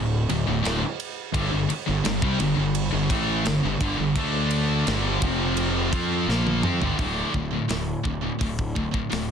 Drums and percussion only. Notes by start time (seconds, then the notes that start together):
0.29 ride
0.65 snare, ride
1.00 ride
1.34 kick, ride
1.70 ride
2.05 snare, ride
2.22 kick
2.40 ride
2.75 ride
3.10 kick, ride
3.46 snare, ride
3.81 kick, ride
4.16 kick, ride
4.51 ride
4.87 snare, ride
5.22 kick, ride
5.57 ride
5.93 kick, ride
6.30 snare
6.47 high tom
6.63 mid tom
6.82 floor tom
6.99 kick, open hi-hat
7.34 kick
7.69 snare, open hi-hat
8.05 kick
8.41 kick, open hi-hat
8.59 kick
8.76 kick
8.94 kick
9.12 snare, open hi-hat